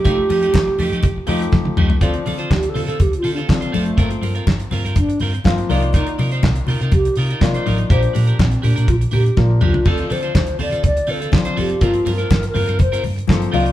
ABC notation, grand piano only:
X:1
M:4/4
L:1/8
Q:1/4=122
K:Dphr
V:1 name="Grand piano"
[F,A,EG]3 z2 [F,A,EG]2 z | [F,CDA]3 z3 [F,CDA]2 | [F,B,CA]3 z3 [F,B,CF] [E,B,DF]- | [E,B,DF]2 z4 [E,B,DF]2 |
[F,B,DG]3 z3 [F,B,DB]2 | [F,CDA]3 z3 [F,CDc]2 | [F,B,CB]3 z3 [F,B,CA] [E,B,DF] |]